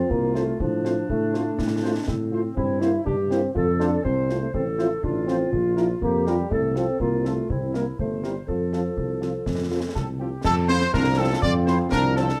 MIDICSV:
0, 0, Header, 1, 9, 480
1, 0, Start_track
1, 0, Key_signature, -1, "major"
1, 0, Tempo, 492207
1, 586, Time_signature, 2, 2, 24, 8
1, 12092, End_track
2, 0, Start_track
2, 0, Title_t, "Flute section"
2, 0, Program_c, 0, 73
2, 9704, Note_on_c, 0, 81, 53
2, 9762, Note_off_c, 0, 81, 0
2, 9935, Note_on_c, 0, 79, 38
2, 9993, Note_off_c, 0, 79, 0
2, 10180, Note_on_c, 0, 81, 80
2, 10406, Note_off_c, 0, 81, 0
2, 10418, Note_on_c, 0, 84, 88
2, 10656, Note_on_c, 0, 82, 84
2, 10661, Note_off_c, 0, 84, 0
2, 10898, Note_on_c, 0, 81, 81
2, 10900, Note_off_c, 0, 82, 0
2, 10957, Note_off_c, 0, 81, 0
2, 11142, Note_on_c, 0, 86, 84
2, 11201, Note_off_c, 0, 86, 0
2, 11376, Note_on_c, 0, 84, 75
2, 11434, Note_off_c, 0, 84, 0
2, 11627, Note_on_c, 0, 82, 84
2, 11847, Note_off_c, 0, 82, 0
2, 11861, Note_on_c, 0, 81, 87
2, 11920, Note_off_c, 0, 81, 0
2, 12092, End_track
3, 0, Start_track
3, 0, Title_t, "Trumpet section"
3, 0, Program_c, 1, 61
3, 342, Note_on_c, 1, 72, 45
3, 429, Note_off_c, 1, 72, 0
3, 823, Note_on_c, 1, 72, 47
3, 910, Note_off_c, 1, 72, 0
3, 1299, Note_on_c, 1, 72, 41
3, 1387, Note_off_c, 1, 72, 0
3, 1788, Note_on_c, 1, 72, 49
3, 1874, Note_off_c, 1, 72, 0
3, 2274, Note_on_c, 1, 72, 45
3, 2359, Note_off_c, 1, 72, 0
3, 2751, Note_on_c, 1, 72, 51
3, 2837, Note_off_c, 1, 72, 0
3, 3235, Note_on_c, 1, 72, 47
3, 3319, Note_off_c, 1, 72, 0
3, 3704, Note_on_c, 1, 72, 48
3, 3792, Note_off_c, 1, 72, 0
3, 4186, Note_on_c, 1, 72, 43
3, 4273, Note_off_c, 1, 72, 0
3, 4664, Note_on_c, 1, 72, 49
3, 4752, Note_off_c, 1, 72, 0
3, 5152, Note_on_c, 1, 72, 41
3, 5238, Note_off_c, 1, 72, 0
3, 5628, Note_on_c, 1, 70, 47
3, 5714, Note_off_c, 1, 70, 0
3, 6108, Note_on_c, 1, 70, 45
3, 6194, Note_off_c, 1, 70, 0
3, 6595, Note_on_c, 1, 69, 43
3, 6680, Note_off_c, 1, 69, 0
3, 7070, Note_on_c, 1, 69, 39
3, 7156, Note_off_c, 1, 69, 0
3, 7546, Note_on_c, 1, 70, 39
3, 7633, Note_off_c, 1, 70, 0
3, 8025, Note_on_c, 1, 70, 34
3, 8112, Note_off_c, 1, 70, 0
3, 8509, Note_on_c, 1, 69, 35
3, 8595, Note_off_c, 1, 69, 0
3, 8993, Note_on_c, 1, 69, 29
3, 9078, Note_off_c, 1, 69, 0
3, 9470, Note_on_c, 1, 69, 32
3, 9556, Note_off_c, 1, 69, 0
3, 9712, Note_on_c, 1, 69, 64
3, 9818, Note_off_c, 1, 69, 0
3, 9952, Note_on_c, 1, 67, 39
3, 9952, Note_on_c, 1, 69, 31
3, 10037, Note_off_c, 1, 69, 0
3, 10172, Note_off_c, 1, 67, 0
3, 10191, Note_on_c, 1, 69, 108
3, 10298, Note_off_c, 1, 69, 0
3, 10421, Note_on_c, 1, 72, 104
3, 10646, Note_off_c, 1, 72, 0
3, 10670, Note_on_c, 1, 70, 89
3, 10890, Note_off_c, 1, 70, 0
3, 10905, Note_on_c, 1, 69, 92
3, 11139, Note_on_c, 1, 74, 106
3, 11144, Note_off_c, 1, 69, 0
3, 11248, Note_off_c, 1, 74, 0
3, 11375, Note_on_c, 1, 72, 73
3, 11484, Note_off_c, 1, 72, 0
3, 11615, Note_on_c, 1, 70, 95
3, 11841, Note_off_c, 1, 70, 0
3, 11865, Note_on_c, 1, 69, 88
3, 12092, Note_off_c, 1, 69, 0
3, 12092, End_track
4, 0, Start_track
4, 0, Title_t, "Woodwind section"
4, 0, Program_c, 2, 71
4, 0, Note_on_c, 2, 65, 61
4, 547, Note_off_c, 2, 65, 0
4, 584, Note_on_c, 2, 62, 65
4, 2025, Note_on_c, 2, 60, 53
4, 2026, Note_off_c, 2, 62, 0
4, 2499, Note_on_c, 2, 64, 59
4, 2506, Note_off_c, 2, 60, 0
4, 2950, Note_off_c, 2, 64, 0
4, 2984, Note_on_c, 2, 67, 63
4, 3338, Note_off_c, 2, 67, 0
4, 3473, Note_on_c, 2, 69, 59
4, 3917, Note_off_c, 2, 69, 0
4, 3940, Note_on_c, 2, 72, 68
4, 4390, Note_off_c, 2, 72, 0
4, 4432, Note_on_c, 2, 69, 59
4, 4910, Note_off_c, 2, 69, 0
4, 4916, Note_on_c, 2, 65, 60
4, 5872, Note_off_c, 2, 65, 0
4, 5877, Note_on_c, 2, 67, 55
4, 6353, Note_off_c, 2, 67, 0
4, 6359, Note_on_c, 2, 69, 57
4, 6801, Note_off_c, 2, 69, 0
4, 6831, Note_on_c, 2, 65, 51
4, 7276, Note_off_c, 2, 65, 0
4, 7310, Note_on_c, 2, 64, 44
4, 7756, Note_off_c, 2, 64, 0
4, 7796, Note_on_c, 2, 72, 48
4, 8266, Note_on_c, 2, 69, 39
4, 8272, Note_off_c, 2, 72, 0
4, 9666, Note_off_c, 2, 69, 0
4, 9708, Note_on_c, 2, 60, 53
4, 9816, Note_off_c, 2, 60, 0
4, 9946, Note_on_c, 2, 58, 36
4, 10054, Note_off_c, 2, 58, 0
4, 10187, Note_on_c, 2, 60, 74
4, 10294, Note_off_c, 2, 60, 0
4, 10418, Note_on_c, 2, 64, 73
4, 10528, Note_off_c, 2, 64, 0
4, 10655, Note_on_c, 2, 62, 85
4, 10765, Note_off_c, 2, 62, 0
4, 10906, Note_on_c, 2, 60, 70
4, 11013, Note_off_c, 2, 60, 0
4, 11142, Note_on_c, 2, 65, 87
4, 11250, Note_off_c, 2, 65, 0
4, 11380, Note_on_c, 2, 64, 67
4, 11488, Note_off_c, 2, 64, 0
4, 11629, Note_on_c, 2, 62, 88
4, 11736, Note_off_c, 2, 62, 0
4, 11874, Note_on_c, 2, 60, 68
4, 11979, Note_off_c, 2, 60, 0
4, 12092, End_track
5, 0, Start_track
5, 0, Title_t, "Euphonium"
5, 0, Program_c, 3, 58
5, 0, Note_on_c, 3, 60, 76
5, 98, Note_on_c, 3, 58, 76
5, 112, Note_off_c, 3, 60, 0
5, 330, Note_on_c, 3, 57, 71
5, 344, Note_off_c, 3, 58, 0
5, 578, Note_off_c, 3, 57, 0
5, 587, Note_on_c, 3, 53, 68
5, 1034, Note_off_c, 3, 53, 0
5, 1066, Note_on_c, 3, 57, 81
5, 1748, Note_off_c, 3, 57, 0
5, 2492, Note_on_c, 3, 60, 84
5, 2733, Note_on_c, 3, 64, 92
5, 2748, Note_off_c, 3, 60, 0
5, 2969, Note_off_c, 3, 64, 0
5, 2975, Note_on_c, 3, 62, 82
5, 3086, Note_off_c, 3, 62, 0
5, 3217, Note_on_c, 3, 60, 75
5, 3446, Note_off_c, 3, 60, 0
5, 3457, Note_on_c, 3, 65, 82
5, 3568, Note_off_c, 3, 65, 0
5, 3701, Note_on_c, 3, 62, 89
5, 3945, Note_on_c, 3, 60, 71
5, 3960, Note_off_c, 3, 62, 0
5, 4299, Note_off_c, 3, 60, 0
5, 4305, Note_on_c, 3, 57, 65
5, 4360, Note_off_c, 3, 57, 0
5, 4423, Note_on_c, 3, 60, 68
5, 4533, Note_off_c, 3, 60, 0
5, 4667, Note_on_c, 3, 64, 80
5, 4776, Note_off_c, 3, 64, 0
5, 4906, Note_on_c, 3, 62, 60
5, 5130, Note_off_c, 3, 62, 0
5, 5138, Note_on_c, 3, 60, 72
5, 5380, Note_on_c, 3, 65, 75
5, 5395, Note_off_c, 3, 60, 0
5, 5622, Note_off_c, 3, 65, 0
5, 5628, Note_on_c, 3, 64, 77
5, 5736, Note_off_c, 3, 64, 0
5, 5869, Note_on_c, 3, 58, 74
5, 6092, Note_off_c, 3, 58, 0
5, 6116, Note_on_c, 3, 55, 65
5, 6347, Note_on_c, 3, 57, 63
5, 6362, Note_off_c, 3, 55, 0
5, 6587, Note_on_c, 3, 60, 76
5, 6602, Note_off_c, 3, 57, 0
5, 6824, Note_off_c, 3, 60, 0
5, 6830, Note_on_c, 3, 58, 64
5, 7079, Note_on_c, 3, 57, 55
5, 7094, Note_off_c, 3, 58, 0
5, 7320, Note_on_c, 3, 60, 64
5, 7334, Note_off_c, 3, 57, 0
5, 7551, Note_off_c, 3, 60, 0
5, 7557, Note_on_c, 3, 58, 64
5, 7663, Note_off_c, 3, 58, 0
5, 7802, Note_on_c, 3, 57, 54
5, 8019, Note_off_c, 3, 57, 0
5, 8035, Note_on_c, 3, 55, 43
5, 8141, Note_off_c, 3, 55, 0
5, 8269, Note_on_c, 3, 53, 57
5, 9908, Note_off_c, 3, 53, 0
5, 10659, Note_on_c, 3, 62, 77
5, 11145, Note_on_c, 3, 60, 68
5, 11159, Note_off_c, 3, 62, 0
5, 11609, Note_off_c, 3, 60, 0
5, 11615, Note_on_c, 3, 62, 81
5, 12092, Note_off_c, 3, 62, 0
5, 12092, End_track
6, 0, Start_track
6, 0, Title_t, "French horn section"
6, 0, Program_c, 4, 60
6, 346, Note_on_c, 4, 60, 52
6, 346, Note_on_c, 4, 65, 55
6, 349, Note_on_c, 4, 57, 51
6, 432, Note_off_c, 4, 60, 0
6, 433, Note_off_c, 4, 65, 0
6, 434, Note_off_c, 4, 57, 0
6, 826, Note_on_c, 4, 60, 51
6, 827, Note_on_c, 4, 57, 51
6, 829, Note_on_c, 4, 65, 46
6, 913, Note_off_c, 4, 57, 0
6, 913, Note_off_c, 4, 60, 0
6, 915, Note_off_c, 4, 65, 0
6, 1308, Note_on_c, 4, 60, 52
6, 1308, Note_on_c, 4, 65, 51
6, 1309, Note_on_c, 4, 57, 54
6, 1394, Note_off_c, 4, 60, 0
6, 1394, Note_off_c, 4, 65, 0
6, 1395, Note_off_c, 4, 57, 0
6, 1788, Note_on_c, 4, 60, 53
6, 1788, Note_on_c, 4, 65, 56
6, 1790, Note_on_c, 4, 57, 53
6, 1874, Note_off_c, 4, 60, 0
6, 1874, Note_off_c, 4, 65, 0
6, 1876, Note_off_c, 4, 57, 0
6, 2262, Note_on_c, 4, 57, 51
6, 2264, Note_on_c, 4, 65, 50
6, 2265, Note_on_c, 4, 60, 52
6, 2349, Note_off_c, 4, 57, 0
6, 2351, Note_off_c, 4, 65, 0
6, 2352, Note_off_c, 4, 60, 0
6, 2741, Note_on_c, 4, 60, 45
6, 2744, Note_on_c, 4, 64, 50
6, 2746, Note_on_c, 4, 58, 55
6, 2829, Note_off_c, 4, 60, 0
6, 2831, Note_off_c, 4, 64, 0
6, 2833, Note_off_c, 4, 58, 0
6, 3227, Note_on_c, 4, 58, 53
6, 3227, Note_on_c, 4, 64, 57
6, 3230, Note_on_c, 4, 60, 48
6, 3314, Note_off_c, 4, 58, 0
6, 3314, Note_off_c, 4, 64, 0
6, 3316, Note_off_c, 4, 60, 0
6, 3711, Note_on_c, 4, 57, 47
6, 3711, Note_on_c, 4, 60, 48
6, 3711, Note_on_c, 4, 65, 51
6, 3797, Note_off_c, 4, 57, 0
6, 3797, Note_off_c, 4, 60, 0
6, 3797, Note_off_c, 4, 65, 0
6, 4187, Note_on_c, 4, 65, 46
6, 4188, Note_on_c, 4, 57, 48
6, 4189, Note_on_c, 4, 60, 48
6, 4274, Note_off_c, 4, 65, 0
6, 4275, Note_off_c, 4, 57, 0
6, 4275, Note_off_c, 4, 60, 0
6, 4668, Note_on_c, 4, 65, 45
6, 4669, Note_on_c, 4, 53, 47
6, 4670, Note_on_c, 4, 60, 42
6, 4755, Note_off_c, 4, 53, 0
6, 4755, Note_off_c, 4, 65, 0
6, 4756, Note_off_c, 4, 60, 0
6, 5144, Note_on_c, 4, 65, 46
6, 5145, Note_on_c, 4, 53, 49
6, 5145, Note_on_c, 4, 60, 48
6, 5231, Note_off_c, 4, 65, 0
6, 5232, Note_off_c, 4, 53, 0
6, 5232, Note_off_c, 4, 60, 0
6, 5628, Note_on_c, 4, 62, 43
6, 5631, Note_on_c, 4, 53, 44
6, 5631, Note_on_c, 4, 65, 43
6, 5714, Note_off_c, 4, 62, 0
6, 5717, Note_off_c, 4, 53, 0
6, 5717, Note_off_c, 4, 65, 0
6, 6116, Note_on_c, 4, 65, 48
6, 6118, Note_on_c, 4, 62, 44
6, 6119, Note_on_c, 4, 53, 47
6, 6201, Note_off_c, 4, 65, 0
6, 6202, Note_off_c, 4, 62, 0
6, 6203, Note_off_c, 4, 53, 0
6, 6591, Note_on_c, 4, 60, 44
6, 6592, Note_on_c, 4, 53, 44
6, 6593, Note_on_c, 4, 65, 44
6, 6677, Note_off_c, 4, 53, 0
6, 6677, Note_off_c, 4, 60, 0
6, 6679, Note_off_c, 4, 65, 0
6, 7070, Note_on_c, 4, 53, 38
6, 7070, Note_on_c, 4, 65, 43
6, 7071, Note_on_c, 4, 60, 43
6, 7156, Note_off_c, 4, 53, 0
6, 7157, Note_off_c, 4, 60, 0
6, 7157, Note_off_c, 4, 65, 0
6, 7545, Note_on_c, 4, 55, 35
6, 7546, Note_on_c, 4, 60, 38
6, 7547, Note_on_c, 4, 64, 39
6, 7632, Note_off_c, 4, 55, 0
6, 7633, Note_off_c, 4, 60, 0
6, 7634, Note_off_c, 4, 64, 0
6, 8028, Note_on_c, 4, 60, 37
6, 8029, Note_on_c, 4, 64, 36
6, 8031, Note_on_c, 4, 55, 37
6, 8115, Note_off_c, 4, 60, 0
6, 8115, Note_off_c, 4, 64, 0
6, 8117, Note_off_c, 4, 55, 0
6, 8511, Note_on_c, 4, 65, 34
6, 8513, Note_on_c, 4, 60, 34
6, 8514, Note_on_c, 4, 53, 36
6, 8597, Note_off_c, 4, 65, 0
6, 8598, Note_off_c, 4, 60, 0
6, 8599, Note_off_c, 4, 53, 0
6, 8984, Note_on_c, 4, 53, 35
6, 8984, Note_on_c, 4, 60, 33
6, 8984, Note_on_c, 4, 65, 35
6, 9071, Note_off_c, 4, 53, 0
6, 9071, Note_off_c, 4, 60, 0
6, 9071, Note_off_c, 4, 65, 0
6, 9466, Note_on_c, 4, 53, 35
6, 9466, Note_on_c, 4, 60, 33
6, 9466, Note_on_c, 4, 65, 29
6, 9553, Note_off_c, 4, 53, 0
6, 9553, Note_off_c, 4, 60, 0
6, 9553, Note_off_c, 4, 65, 0
6, 9946, Note_on_c, 4, 60, 35
6, 9946, Note_on_c, 4, 65, 34
6, 9947, Note_on_c, 4, 53, 34
6, 10032, Note_off_c, 4, 60, 0
6, 10033, Note_off_c, 4, 53, 0
6, 10033, Note_off_c, 4, 65, 0
6, 10424, Note_on_c, 4, 53, 60
6, 10425, Note_on_c, 4, 60, 64
6, 10426, Note_off_c, 4, 60, 0
6, 10426, Note_on_c, 4, 60, 62
6, 10511, Note_off_c, 4, 53, 0
6, 10512, Note_off_c, 4, 60, 0
6, 10908, Note_on_c, 4, 60, 63
6, 10910, Note_off_c, 4, 60, 0
6, 10910, Note_on_c, 4, 53, 60
6, 10910, Note_on_c, 4, 60, 63
6, 10995, Note_off_c, 4, 53, 0
6, 10995, Note_off_c, 4, 60, 0
6, 11384, Note_on_c, 4, 60, 67
6, 11386, Note_off_c, 4, 60, 0
6, 11386, Note_on_c, 4, 53, 58
6, 11386, Note_on_c, 4, 60, 60
6, 11471, Note_off_c, 4, 53, 0
6, 11471, Note_off_c, 4, 60, 0
6, 11870, Note_on_c, 4, 60, 69
6, 11872, Note_off_c, 4, 60, 0
6, 11872, Note_on_c, 4, 53, 65
6, 11872, Note_on_c, 4, 60, 66
6, 11956, Note_off_c, 4, 53, 0
6, 11956, Note_off_c, 4, 60, 0
6, 12092, End_track
7, 0, Start_track
7, 0, Title_t, "Trombone section"
7, 0, Program_c, 5, 61
7, 10183, Note_on_c, 5, 60, 75
7, 10185, Note_on_c, 5, 53, 79
7, 12061, Note_off_c, 5, 60, 0
7, 12062, Note_off_c, 5, 53, 0
7, 12092, End_track
8, 0, Start_track
8, 0, Title_t, "Tuba"
8, 0, Program_c, 6, 58
8, 100, Note_on_c, 6, 36, 62
8, 503, Note_off_c, 6, 36, 0
8, 583, Note_on_c, 6, 45, 62
8, 985, Note_off_c, 6, 45, 0
8, 1062, Note_on_c, 6, 45, 62
8, 1464, Note_off_c, 6, 45, 0
8, 1540, Note_on_c, 6, 45, 68
8, 1944, Note_off_c, 6, 45, 0
8, 2024, Note_on_c, 6, 45, 60
8, 2426, Note_off_c, 6, 45, 0
8, 2506, Note_on_c, 6, 43, 64
8, 2907, Note_off_c, 6, 43, 0
8, 2985, Note_on_c, 6, 43, 63
8, 3387, Note_off_c, 6, 43, 0
8, 3470, Note_on_c, 6, 41, 64
8, 3869, Note_off_c, 6, 41, 0
8, 3946, Note_on_c, 6, 36, 63
8, 4347, Note_off_c, 6, 36, 0
8, 4425, Note_on_c, 6, 33, 56
8, 4827, Note_off_c, 6, 33, 0
8, 4908, Note_on_c, 6, 33, 59
8, 5308, Note_off_c, 6, 33, 0
8, 5386, Note_on_c, 6, 34, 60
8, 5787, Note_off_c, 6, 34, 0
8, 5862, Note_on_c, 6, 41, 59
8, 6265, Note_off_c, 6, 41, 0
8, 6343, Note_on_c, 6, 36, 54
8, 6708, Note_off_c, 6, 36, 0
8, 6829, Note_on_c, 6, 36, 53
8, 7229, Note_off_c, 6, 36, 0
8, 7307, Note_on_c, 6, 36, 49
8, 7707, Note_off_c, 6, 36, 0
8, 7786, Note_on_c, 6, 31, 44
8, 8187, Note_off_c, 6, 31, 0
8, 8265, Note_on_c, 6, 41, 43
8, 8666, Note_off_c, 6, 41, 0
8, 8750, Note_on_c, 6, 36, 40
8, 9149, Note_off_c, 6, 36, 0
8, 9229, Note_on_c, 6, 41, 40
8, 9628, Note_off_c, 6, 41, 0
8, 9709, Note_on_c, 6, 36, 48
8, 10107, Note_off_c, 6, 36, 0
8, 10184, Note_on_c, 6, 41, 78
8, 10584, Note_off_c, 6, 41, 0
8, 10663, Note_on_c, 6, 36, 84
8, 11063, Note_off_c, 6, 36, 0
8, 11140, Note_on_c, 6, 41, 76
8, 11541, Note_off_c, 6, 41, 0
8, 11620, Note_on_c, 6, 36, 77
8, 12020, Note_off_c, 6, 36, 0
8, 12092, End_track
9, 0, Start_track
9, 0, Title_t, "Drums"
9, 101, Note_on_c, 9, 35, 67
9, 198, Note_off_c, 9, 35, 0
9, 345, Note_on_c, 9, 38, 33
9, 442, Note_off_c, 9, 38, 0
9, 585, Note_on_c, 9, 35, 74
9, 682, Note_off_c, 9, 35, 0
9, 828, Note_on_c, 9, 38, 35
9, 926, Note_off_c, 9, 38, 0
9, 1069, Note_on_c, 9, 35, 70
9, 1167, Note_off_c, 9, 35, 0
9, 1309, Note_on_c, 9, 38, 33
9, 1407, Note_off_c, 9, 38, 0
9, 1548, Note_on_c, 9, 35, 61
9, 1548, Note_on_c, 9, 38, 53
9, 1645, Note_off_c, 9, 35, 0
9, 1645, Note_off_c, 9, 38, 0
9, 2026, Note_on_c, 9, 35, 65
9, 2026, Note_on_c, 9, 38, 46
9, 2124, Note_off_c, 9, 35, 0
9, 2124, Note_off_c, 9, 38, 0
9, 2506, Note_on_c, 9, 35, 69
9, 2603, Note_off_c, 9, 35, 0
9, 2745, Note_on_c, 9, 38, 35
9, 2843, Note_off_c, 9, 38, 0
9, 2986, Note_on_c, 9, 35, 70
9, 3083, Note_off_c, 9, 35, 0
9, 3227, Note_on_c, 9, 38, 37
9, 3325, Note_off_c, 9, 38, 0
9, 3467, Note_on_c, 9, 35, 67
9, 3564, Note_off_c, 9, 35, 0
9, 3709, Note_on_c, 9, 38, 35
9, 3806, Note_off_c, 9, 38, 0
9, 3946, Note_on_c, 9, 35, 66
9, 4044, Note_off_c, 9, 35, 0
9, 4188, Note_on_c, 9, 38, 30
9, 4285, Note_off_c, 9, 38, 0
9, 4427, Note_on_c, 9, 35, 70
9, 4525, Note_off_c, 9, 35, 0
9, 4669, Note_on_c, 9, 38, 32
9, 4767, Note_off_c, 9, 38, 0
9, 4910, Note_on_c, 9, 35, 61
9, 5007, Note_off_c, 9, 35, 0
9, 5151, Note_on_c, 9, 38, 33
9, 5249, Note_off_c, 9, 38, 0
9, 5391, Note_on_c, 9, 35, 63
9, 5489, Note_off_c, 9, 35, 0
9, 5629, Note_on_c, 9, 38, 32
9, 5726, Note_off_c, 9, 38, 0
9, 5871, Note_on_c, 9, 35, 61
9, 5969, Note_off_c, 9, 35, 0
9, 6111, Note_on_c, 9, 38, 33
9, 6209, Note_off_c, 9, 38, 0
9, 6351, Note_on_c, 9, 35, 68
9, 6449, Note_off_c, 9, 35, 0
9, 6590, Note_on_c, 9, 38, 33
9, 6688, Note_off_c, 9, 38, 0
9, 6827, Note_on_c, 9, 35, 61
9, 6925, Note_off_c, 9, 35, 0
9, 7071, Note_on_c, 9, 38, 33
9, 7168, Note_off_c, 9, 38, 0
9, 7312, Note_on_c, 9, 35, 63
9, 7409, Note_off_c, 9, 35, 0
9, 7551, Note_on_c, 9, 38, 34
9, 7649, Note_off_c, 9, 38, 0
9, 7792, Note_on_c, 9, 35, 59
9, 7890, Note_off_c, 9, 35, 0
9, 8032, Note_on_c, 9, 38, 30
9, 8130, Note_off_c, 9, 38, 0
9, 8272, Note_on_c, 9, 35, 57
9, 8370, Note_off_c, 9, 35, 0
9, 8513, Note_on_c, 9, 38, 33
9, 8610, Note_off_c, 9, 38, 0
9, 8749, Note_on_c, 9, 35, 59
9, 8847, Note_off_c, 9, 35, 0
9, 8991, Note_on_c, 9, 38, 31
9, 9089, Note_off_c, 9, 38, 0
9, 9228, Note_on_c, 9, 35, 61
9, 9228, Note_on_c, 9, 38, 49
9, 9326, Note_off_c, 9, 35, 0
9, 9326, Note_off_c, 9, 38, 0
9, 9708, Note_on_c, 9, 35, 68
9, 9708, Note_on_c, 9, 38, 45
9, 9806, Note_off_c, 9, 35, 0
9, 9806, Note_off_c, 9, 38, 0
9, 10186, Note_on_c, 9, 35, 79
9, 10186, Note_on_c, 9, 38, 83
9, 10186, Note_on_c, 9, 49, 57
9, 10283, Note_off_c, 9, 35, 0
9, 10283, Note_off_c, 9, 38, 0
9, 10283, Note_off_c, 9, 49, 0
9, 10427, Note_on_c, 9, 38, 53
9, 10525, Note_off_c, 9, 38, 0
9, 10545, Note_on_c, 9, 38, 52
9, 10642, Note_off_c, 9, 38, 0
9, 10666, Note_on_c, 9, 35, 83
9, 10666, Note_on_c, 9, 38, 68
9, 10763, Note_off_c, 9, 35, 0
9, 10763, Note_off_c, 9, 38, 0
9, 11143, Note_on_c, 9, 35, 82
9, 11240, Note_off_c, 9, 35, 0
9, 11382, Note_on_c, 9, 38, 55
9, 11480, Note_off_c, 9, 38, 0
9, 11625, Note_on_c, 9, 35, 80
9, 11625, Note_on_c, 9, 38, 84
9, 11722, Note_off_c, 9, 35, 0
9, 11722, Note_off_c, 9, 38, 0
9, 11863, Note_on_c, 9, 38, 52
9, 11960, Note_off_c, 9, 38, 0
9, 11984, Note_on_c, 9, 38, 50
9, 12081, Note_off_c, 9, 38, 0
9, 12092, End_track
0, 0, End_of_file